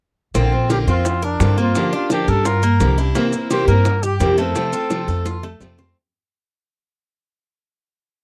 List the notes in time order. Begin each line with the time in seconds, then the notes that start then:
0.34 A#1 D3 A#3 C4 F4, high bongo, maracas
0.52 A#3 C4 F4, high bongo
0.69 D3 A#3 C4 F4 G4 A#4, high bongo, maracas
0.87 F2 A#3 C4 F4, high bongo, maracas
1.05 muted steel-string acoustic guitar stroke, high bongo, maracas
1.22 D4 A#4, high bongo
1.40 G2 D3 A#3 C4 F4, high bongo, low bongo, maracas
1.57 A#3 C4 F4, maracas
1.75 D3 F3 A#3 D4 G4, high bongo, maracas
1.93 A#3 D4 F4 G4, high bongo
2.10 D3 F3 A#3 D4 G4, high bongo, maracas
2.28 G2 A#3 D4 G4 A4 A#4, high bongo, maracas
2.45 F4 A#4, muted steel-string acoustic guitar stroke, high bongo, maracas
2.63 A#3, maracas
2.80 C2 D3 F3 A#3 D4 G4, high bongo, low bongo, maracas
2.98 A#3 D4 E4 G4, high bongo, maracas
3.15 C3 E3 A#3 C4 E4, high bongo, maracas
3.33 A#3 C4 E4, high bongo, maracas
3.50 C3 E3 A#3 C4 E4 G4 C5, high bongo, maracas
3.67 G2 A#3 C4 E4 A#4, high bongo, maracas
3.85 muted steel-string acoustic guitar stroke, high bongo, maracas
4.03 G4, high bongo, maracas
4.20 F2 C3 E3 A#3 C4 E4, high bongo, low bongo, maracas
4.38 A3 A#3 C4 E4 A4, maracas
4.55 C3 F3 A3 C4 F4, high bongo, maracas
4.72 A3 C4 F4, high bongo, maracas
4.90 C3 F3 A3 C4 F4, high bongo, maracas
5.08 F2 A3 C4 F4 A4, high bongo, maracas
5.26 F4, muted steel-string acoustic guitar stroke, high bongo, maracas
5.43 A3, low bongo
5.60 F2 C3 F3 A3 C4 F4, low bongo, maracas
5.78 A3 C4 F4, low bongo, maracas